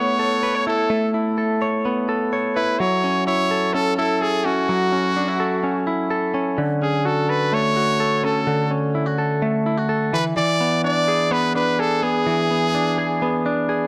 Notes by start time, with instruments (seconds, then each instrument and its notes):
Already playing: clean electric guitar A3 B3 E4 A4 C#5, trumpet C#5
0.19 clean electric guitar A4
0.43 clean electric guitar B4
0.55 clean electric guitar C#5
0.67 clean electric guitar E4, trumpet A4
0.90 clean electric guitar A3
1.14 clean electric guitar E4
1.38 clean electric guitar A4
1.62 clean electric guitar C#5
1.85 clean electric guitar B3
2.09 clean electric guitar A4
2.33 clean electric guitar C#5
2.55 clean electric guitar E4, trumpet B4
2.79 clean electric guitar F#3, trumpet C#5
3.04 clean electric guitar C#4
3.27 clean electric guitar E4, trumpet C#5
3.51 clean electric guitar A4
3.74 clean electric guitar C#4, trumpet A4
3.97 clean electric guitar E4, trumpet A4
4.21 trumpet G#4, clean electric guitar A4
4.45 clean electric guitar C#4, trumpet F#4
4.69 clean electric guitar F#3
4.92 clean electric guitar C#4
5.16 clean electric guitar D4
5.28 clean electric guitar E4
5.40 clean electric guitar A4
5.63 clean electric guitar C#4
5.87 clean electric guitar E4
6.10 clean electric guitar A4
6.34 clean electric guitar C#4
6.58 clean electric guitar D3
6.82 clean electric guitar C#4, trumpet G#4
7.05 clean electric guitar F#4, trumpet A4
7.29 clean electric guitar A4, trumpet B4
7.52 clean electric guitar A3, trumpet C#5
7.76 clean electric guitar F#4
8.00 clean electric guitar A4
8.24 clean electric guitar C#4, trumpet A4
8.47 clean electric guitar D3
8.71 clean electric guitar C#4
8.95 clean electric guitar E4
9.06 clean electric guitar F#4
9.18 clean electric guitar A4
9.42 clean electric guitar A3
9.66 clean electric guitar E4
9.77 clean electric guitar F#4
9.89 clean electric guitar A4
10.13 clean electric guitar E3, trumpet B4
10.37 clean electric guitar E3, trumpet D5
10.61 clean electric guitar B3
10.84 clean electric guitar D4, trumpet D5
11.08 clean electric guitar G#4
11.31 clean electric guitar B3, trumpet B4
11.55 clean electric guitar D4, trumpet B4
11.79 clean electric guitar G#4, trumpet A4
12.03 clean electric guitar B3, trumpet G#4
12.27 clean electric guitar E3
12.51 clean electric guitar B3
12.75 clean electric guitar D4
12.98 clean electric guitar G#4
13.22 clean electric guitar B3
13.46 clean electric guitar D4
13.69 clean electric guitar G#4